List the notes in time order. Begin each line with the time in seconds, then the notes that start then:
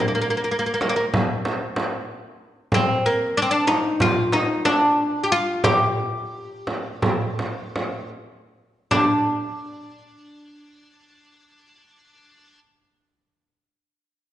0.08 A#3
0.15 A#3
0.22 A#3
0.30 A#3
0.37 A#3
0.44 A#3
0.51 A#3
0.59 A#3
0.66 A#3
0.74 A#3
0.81 A#3, frame drum
0.89 A#3
0.96 A#3
1.14 frame drum
1.45 frame drum
1.76 frame drum
2.72 C4, frame drum
3.06 A#3
3.37 D4
3.42 C4
3.51 D4
3.67 D#4, frame drum
4.00 F4, frame drum
4.32 D#4, frame drum
4.65 D4, frame drum
5.24 G4
5.32 F4
5.64 G4, frame drum
6.67 frame drum
7.02 frame drum
7.39 frame drum
7.76 frame drum
8.91 D4, frame drum